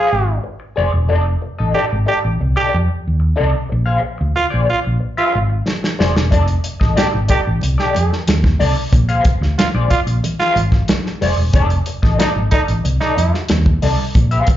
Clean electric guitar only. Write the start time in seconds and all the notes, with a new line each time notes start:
Already playing: F5
0.10 muted clean electric guitar stroke
0.27 muted clean electric guitar stroke
0.44 muted clean electric guitar stroke
0.60 muted clean electric guitar stroke
0.76 G#4 C5 D5
0.93 muted clean electric guitar stroke
1.08 D#4 A4 D5
1.25 muted clean electric guitar stroke
1.42 muted clean electric guitar stroke
1.58 D#4 A4 D#5
1.74 D#4 A4 D5
1.89 muted clean electric guitar stroke
2.06 D#4 A4 D5
2.23 muted clean electric guitar stroke
2.40 muted clean electric guitar stroke
2.56 D#4 A4 D5
2.72 muted clean electric guitar stroke
2.88 muted clean electric guitar stroke
3.20 muted clean electric guitar stroke
3.36 D#4 A4 D5
3.52 muted clean electric guitar stroke
3.70 muted clean electric guitar stroke
3.86 G#4 C5 F5
4.02 muted clean electric guitar stroke
4.18 muted clean electric guitar stroke
4.36 muted clean electric guitar stroke
4.50 G#4 C5 D5
4.68 muted clean electric guitar stroke
4.84 muted clean electric guitar stroke
5.00 muted clean electric guitar stroke
5.17 G#4 C5 F5
5.33 muted clean electric guitar stroke
5.50 muted clean electric guitar stroke
5.67 muted clean electric guitar stroke
5.83 muted clean electric guitar stroke
5.99 G#4 C5 D5
6.16 muted clean electric guitar stroke
6.31 D#4 A4 D5
6.47 muted clean electric guitar stroke
6.64 muted clean electric guitar stroke
6.80 D#4 A4 D#5
6.95 D#4 A4 D5
7.13 muted clean electric guitar stroke
7.28 D#4 A4 D5
7.45 muted clean electric guitar stroke
7.62 muted clean electric guitar stroke
7.78 D#4 A4 D5
7.95 muted clean electric guitar stroke
8.11 muted clean electric guitar stroke
8.44 muted clean electric guitar stroke
8.59 D#4 A4 D5
8.77 muted clean electric guitar stroke
8.92 muted clean electric guitar stroke
9.09 G#4 C5 F5
9.25 muted clean electric guitar stroke
9.42 muted clean electric guitar stroke
9.59 muted clean electric guitar stroke
9.75 G#4 C5 D5
9.91 muted clean electric guitar stroke
10.07 muted clean electric guitar stroke
10.23 muted clean electric guitar stroke
10.40 G#4 C5 F5
10.57 muted clean electric guitar stroke
10.73 muted clean electric guitar stroke
10.89 muted clean electric guitar stroke
11.06 muted clean electric guitar stroke
11.21 G#4 C5 D5
11.38 muted clean electric guitar stroke
11.54 D#4 A4 D5
11.71 muted clean electric guitar stroke
11.87 muted clean electric guitar stroke
12.02 D#4 A4 D#5
12.18 D#4 A4 D5
12.35 muted clean electric guitar stroke
12.51 D#4 A4 D5
12.68 muted clean electric guitar stroke
12.84 muted clean electric guitar stroke
13.01 D#4 A4 D5
13.17 muted clean electric guitar stroke
13.34 muted clean electric guitar stroke
13.66 muted clean electric guitar stroke
13.82 D#4 A4 D5
13.99 muted clean electric guitar stroke
14.15 muted clean electric guitar stroke
14.31 G#4 C5 F5
14.47 muted clean electric guitar stroke